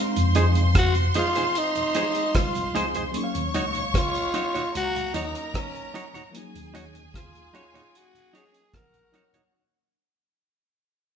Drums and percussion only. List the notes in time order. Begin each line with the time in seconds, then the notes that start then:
0.16 closed hi-hat
0.35 closed hi-hat
0.55 closed hi-hat
0.75 kick, cross-stick, closed hi-hat
0.95 closed hi-hat
1.14 closed hi-hat
1.36 closed hi-hat
1.55 closed hi-hat
1.76 closed hi-hat
1.95 closed hi-hat
2.15 closed hi-hat
2.35 kick, cross-stick, closed hi-hat
2.55 closed hi-hat
2.76 closed hi-hat
2.95 closed hi-hat
3.14 closed hi-hat
3.35 closed hi-hat
3.54 closed hi-hat
3.75 closed hi-hat
3.94 kick, cross-stick, closed hi-hat
4.15 closed hi-hat
4.34 closed hi-hat
4.55 closed hi-hat
4.75 closed hi-hat
4.96 closed hi-hat
5.14 closed hi-hat
5.35 closed hi-hat
5.54 kick, cross-stick, closed hi-hat
5.76 closed hi-hat
5.95 closed hi-hat
6.15 closed hi-hat
6.35 closed hi-hat
6.56 closed hi-hat
6.75 closed hi-hat
6.95 closed hi-hat
7.14 kick, cross-stick, closed hi-hat
7.35 closed hi-hat
7.55 closed hi-hat
7.75 closed hi-hat
7.95 closed hi-hat
8.16 closed hi-hat
8.35 closed hi-hat
8.54 closed hi-hat
8.74 kick, cross-stick, closed hi-hat
8.94 closed hi-hat
9.14 closed hi-hat
9.34 closed hi-hat